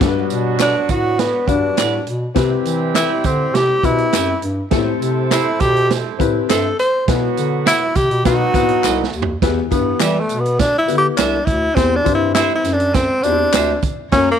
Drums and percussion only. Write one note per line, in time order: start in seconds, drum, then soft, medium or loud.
0.01 kick loud
0.01 snare loud
0.01 closed hi-hat medium
0.30 closed hi-hat medium
0.30 tambourine medium
0.60 snare loud
0.60 clap medium
0.60 closed hi-hat medium
0.60 tambourine medium
0.89 kick medium
0.89 closed hi-hat medium
0.89 tambourine medium
1.19 snare medium
1.19 closed hi-hat medium
1.19 tambourine soft
1.48 kick medium
1.48 closed hi-hat medium
1.48 tambourine soft
1.77 snare loud
1.77 clap medium
1.77 closed hi-hat medium
1.77 tambourine medium
2.07 closed hi-hat medium
2.36 kick loud
2.36 snare loud
2.36 closed hi-hat medium
2.36 tambourine soft
2.65 closed hi-hat medium
2.65 tambourine medium
2.95 snare loud
2.95 clap medium
2.95 closed hi-hat medium
2.95 tambourine medium
3.24 kick medium
3.24 closed hi-hat medium
3.24 tambourine medium
3.55 snare loud
3.55 closed hi-hat medium
3.55 tambourine soft
3.83 kick medium
3.83 closed hi-hat medium
3.83 tambourine soft
3.98 closed hi-hat medium
4.12 snare loud
4.12 clap medium
4.12 closed hi-hat medium
4.12 tambourine medium
4.42 closed hi-hat medium
4.71 kick loud
4.71 snare loud
4.71 closed hi-hat medium
4.71 tambourine soft
5.02 closed hi-hat medium
5.02 tambourine medium
5.31 snare loud
5.31 clap medium
5.31 closed hi-hat medium
5.31 tambourine medium
5.60 kick medium
5.60 closed hi-hat medium
5.60 tambourine medium
5.76 closed hi-hat medium
5.90 snare loud
5.90 closed hi-hat medium
5.90 tambourine soft
6.20 kick medium
6.20 closed hi-hat medium
6.20 tambourine medium
6.49 snare loud
6.49 clap medium
6.49 closed hi-hat medium
6.49 tambourine medium
6.79 closed hi-hat medium
6.79 tambourine soft
7.08 kick loud
7.08 snare loud
7.08 closed hi-hat medium
7.08 tambourine soft
7.37 closed hi-hat medium
7.37 tambourine medium
7.66 snare loud
7.66 clap medium
7.66 closed hi-hat medium
7.66 tambourine medium
7.95 kick loud
7.95 snare soft
7.95 closed hi-hat medium
7.95 tambourine medium
8.11 closed hi-hat medium
8.25 kick loud
8.25 snare loud
8.25 closed hi-hat medium
8.25 tambourine medium
8.54 kick loud
8.54 closed hi-hat medium
8.54 tambourine soft
8.69 closed hi-hat medium
8.84 snare medium
8.84 clap medium
8.84 tambourine medium
9.03 snare medium
9.13 tambourine soft
9.22 floor tom loud
9.42 kick loud
9.42 snare loud
9.42 closed hi-hat medium
9.72 kick medium
9.72 closed hi-hat medium
9.72 tambourine medium
10.00 snare loud
10.00 clap medium
10.00 closed hi-hat medium
10.00 tambourine medium
10.29 closed hi-hat medium
10.29 tambourine medium
10.45 closed hi-hat medium
10.59 kick medium
10.59 snare loud
10.59 closed hi-hat medium
10.59 tambourine medium
10.88 closed hi-hat medium
10.88 tambourine soft
11.18 snare loud
11.18 clap medium
11.18 closed hi-hat medium
11.18 tambourine medium
11.47 kick medium
11.47 closed hi-hat medium
11.47 tambourine soft
11.77 kick loud
11.77 snare loud
11.77 closed hi-hat medium
11.77 tambourine soft
12.06 kick medium
12.06 closed hi-hat medium
12.06 tambourine medium
12.35 snare loud
12.35 clap medium
12.35 closed hi-hat medium
12.35 tambourine medium
12.64 snare soft
12.64 closed hi-hat medium
12.64 tambourine medium
12.80 closed hi-hat medium
12.94 kick medium
12.94 snare loud
12.94 closed hi-hat medium
12.94 tambourine medium
13.24 closed hi-hat medium
13.24 tambourine medium
13.53 snare loud
13.53 clap medium
13.53 closed hi-hat medium
13.53 tambourine medium
13.82 kick medium
13.82 closed hi-hat medium
13.82 tambourine soft
14.12 kick loud
14.12 snare loud
14.12 closed hi-hat medium